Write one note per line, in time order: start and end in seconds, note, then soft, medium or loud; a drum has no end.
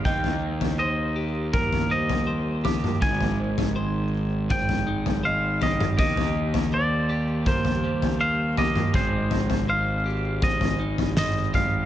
0.00 2.99 D#3 soft
0.00 8.91 C4 soft
0.00 1.89 D#4 soft
0.00 5.94 D#4 medium
0.00 1.16 G4 medium
0.00 0.79 C5 medium
0.05 2.98 D#2 medium
0.05 1.91 D#3 medium
0.05 3.00 A#3 soft
0.05 0.79 D#5 medium
0.05 0.79 G5 medium
0.05 kick medium
0.05 floor tom medium
0.24 floor tom medium
0.61 floor tom medium
0.79 2.26 C5 medium
0.79 1.54 C5 medium
0.79 1.50 D#5 medium
1.16 2.64 G4 medium
1.53 3.01 A#3 medium
1.53 1.92 A#4 medium
1.53 1.91 A#4 medium
1.53 kick medium
1.53 floor tom medium
1.53 mid tom medium
1.73 floor tom medium
1.90 3.04 G3 medium
1.90 2.65 C5 medium
1.90 3.02 D#5 medium
2.09 floor tom medium
2.27 3.75 C5 medium
2.64 3.04 G4 medium
2.64 3.39 D6 medium
2.64 floor tom medium
2.84 mid tom medium
3.01 5.95 G#1 medium
3.01 11.86 D#3 soft
3.01 4.49 G#3 medium
3.01 5.95 G#3 soft
3.01 4.46 G#5 medium
3.01 kick medium
3.01 floor tom medium
3.21 floor tom medium
3.40 4.14 C5 medium
3.58 floor tom medium
3.76 5.23 C5 medium
4.50 5.98 G#3 medium
4.50 5.25 C5 medium
4.50 5.25 G5 medium
4.50 kick medium
4.50 floor tom medium
4.50 mid tom medium
4.69 floor tom medium
4.87 7.83 D#4 medium
5.06 floor tom medium
5.24 6.73 C5 medium
5.24 5.97 D#5 medium
5.24 5.62 F5 medium
5.61 7.09 G4 medium
5.61 5.97 D#5 medium
5.61 floor tom medium
5.80 mid tom medium
5.97 8.91 D#2 medium
5.97 7.84 D#3 medium
5.97 8.92 A#3 soft
5.97 11.86 G4 medium
5.97 6.73 D#5 medium
5.97 6.69 D#5 medium
5.97 kick medium
5.97 floor tom medium
6.17 floor tom medium
6.54 floor tom medium
6.73 7.47 C5 medium
6.73 8.20 C5 medium
6.73 7.43 D5 medium
7.09 8.58 G4 medium
7.46 8.94 A#3 medium
7.46 7.84 A#4 medium
7.46 8.17 C5 medium
7.46 kick medium
7.46 floor tom medium
7.46 mid tom medium
7.65 floor tom medium
7.84 8.98 G3 medium
7.84 8.58 C5 medium
8.02 floor tom medium
8.20 9.69 C5 medium
8.20 8.58 F5 medium
8.57 8.98 G4 medium
8.57 8.93 D#5 medium
8.57 9.32 D6 medium
8.57 floor tom medium
8.75 mid tom medium
8.93 11.86 G#1 medium
8.93 11.86 G#3 soft
8.93 10.42 G#3 medium
8.93 11.86 C4 soft
8.93 9.65 C5 medium
8.93 kick medium
8.93 floor tom medium
9.31 10.06 C5 medium
9.31 floor tom medium
9.50 floor tom medium
9.69 11.17 C5 medium
9.69 10.39 F5 medium
10.06 11.53 G4 medium
10.42 11.86 G#3 medium
10.42 11.17 C5 medium
10.42 11.17 D#5 medium
10.42 kick medium
10.42 floor tom medium
10.61 floor tom medium
10.79 11.86 D#4 medium
10.98 floor tom medium
11.17 11.86 C5 medium
11.17 11.86 D#5 medium
11.17 11.55 D#5 medium
11.17 snare medium
11.17 mid tom medium
11.53 11.86 G4 medium
11.53 11.86 F5 medium
11.53 kick medium
11.53 floor tom medium
11.53 mid tom medium